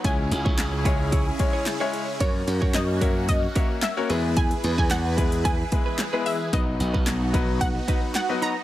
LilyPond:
<<
  \new Staff \with { instrumentName = "Synth pluck" } { \time 4/4 \key b \major \tempo 4 = 111 gis''2 r2 | cis''4 dis''4 dis''4 e''4 | gis''8. gis''16 fis''4 gis''4. e''8 | dis''2 fis''4 fis''8 ais''8 | }
  \new Staff \with { instrumentName = "Clean electric guitar" } { \time 4/4 \key b \major <e' gis' cis''>16 r8 <e' gis' cis''>16 r8 <e' gis' cis''>16 r16 <e' gis' cis''>16 r8 <e' gis' cis''>16 r16 <e' gis' cis''>16 <e' gis' cis''>16 r16 | <fis' ais' cis''>16 r8 <fis' ais' cis''>16 r8 <fis' ais' cis''>16 r8. <fis' ais' cis''>16 r8. <e' gis' b'>16 r16 | <e' gis' b'>16 r8 <e' gis' b'>16 r8 <e' gis' b'>16 r16 <e' gis' b'>16 r8 <e' gis' b'>16 r16 <e' gis' b'>16 <e' gis' b'>16 r16 | <dis' fis' b'>16 r8 <dis' fis' b'>16 r8 <dis' fis' b'>16 r8. <dis' fis' b'>16 r8. <dis' fis' b'>16 r16 | }
  \new Staff \with { instrumentName = "Grand piano" } { \time 4/4 \key b \major <gis cis' e' gis' cis''>8. r8. <gis cis' e' gis' cis''>8 r8 <gis cis' e' gis' cis''>8 r16 <gis cis' e' gis' cis''>8 r16 | <ais cis' fis' ais' cis''>8. r8. <ais cis' fis' ais' e''>8 r8 <ais cis' fis' ais' e''>8 r16 <ais cis' fis' ais' cis''>16 <gis b e' gis' b'>8~ | <gis b e' gis' b'>4 r8 <gis b e' gis' b'>8 r8 <gis b e' gis' b'>8 r16 <gis b e' gis' b'>8 r16 | <fis b dis' fis' b'>8. r8. <fis b dis' fis' b'>8 r8 <fis b dis' fis' b'>8 r16 <fis b dis' fis' b'>8 r16 | }
  \new Staff \with { instrumentName = "Supersaw synth" } { \time 4/4 \key b \major << { <cis e' gis'>1 | r2. r8 <e gis' b'>8~ | <e gis' b'>1 | <dis' fis'>1 | } \\ { cis'1~ | cis'2.~ cis'8 e'8~ | e'1 | b1 | } >> }
  \new Staff \with { instrumentName = "Slap bass" } { \clef bass \time 4/4 \key b \major cis,8 cis,16 cis,2 r4 r16 | fis,8 fis,16 fis,2 r8. e,8~ | e,8 e,16 e,2 r4 r16 | b,,8 b,,16 b,,2 r4 r16 | }
  \new DrumStaff \with { instrumentName = "Drums" } \drummode { \time 4/4 <hh bd>8 hh16 bd16 <hc hh sn>8 <hh bd>8 <hh bd>8 <hh bd>8 <hc hh sn>8 hh8 | <hh bd>8 hh16 bd16 <hc hh sn>8 <hh bd>8 <hh bd>8 <hh bd>8 <hc hh sn>8 hh8 | <hh bd>16 hh16 hh16 bd16 <hc hh sn>8 <hh bd>16 hh16 <hh bd>8 <hh bd>8 <hc hh sn>8 hho8 | <hh bd>8 hh16 bd16 <hc hh sn>8 <hh bd>8 <hh bd>8 <hh bd>8 <hc hh sn>8 hh8 | }
>>